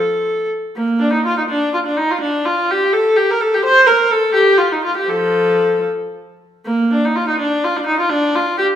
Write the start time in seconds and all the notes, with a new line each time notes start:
Already playing: A4
0.76 A#3
1.00 D4
1.13 D#4
1.25 F4
1.37 D#4
1.49 D4
1.74 F4
1.86 D4
1.97 D#4
2.10 F4
2.21 D4
2.45 F4
2.71 G4
2.93 A4
3.16 G4
3.31 A#4
3.41 A4
3.54 G4
3.65 C5
3.87 A#4
4.11 A4
4.34 G4
4.58 F4
4.72 D#4
4.84 F4
4.97 G4
5.09 F3 A4
6.66 A#3
6.91 D4
7.05 D#4
7.16 F4
7.28 D#4
7.39 D4
7.64 F4
7.77 D4
7.86 D#4
8.00 F4
8.09 D4
8.35 F4
8.58 G4